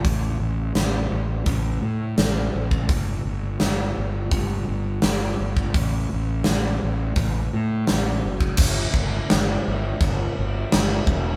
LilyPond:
<<
  \new Staff \with { instrumentName = "Fingered electric bass" } { \clef bass \time 4/4 \key a \dorian \tempo 4 = 84 a,,8 a,,8 a,,8 a,,8 a,,8 a,8 a,,8 a,,8 | g,,8 g,,8 g,,8 g,,8 g,,8 g,,8 g,,8 g,,8 | a,,8 a,,8 a,,8 a,,8 a,,8 a,8 a,,8 fis,,8 | g,,8 g,,8 g,,8 g,,8 g,,8 g,,8 g,,8 e,,8 | }
  \new DrumStaff \with { instrumentName = "Drums" } \drummode { \time 4/4 <hho bd>4 <hho sn>4 <hho bd>4 <hho sn>8. bd16 | <hho bd>4 <hho sn>4 <hho bd>4 <hho sn>8. bd16 | <hho bd>4 <hho sn>4 <hho bd>4 <hho sn>8. bd16 | <cymc bd>8 bd8 <cymc sn>4 <cymc bd>4 <cymc sn>8 bd8 | }
>>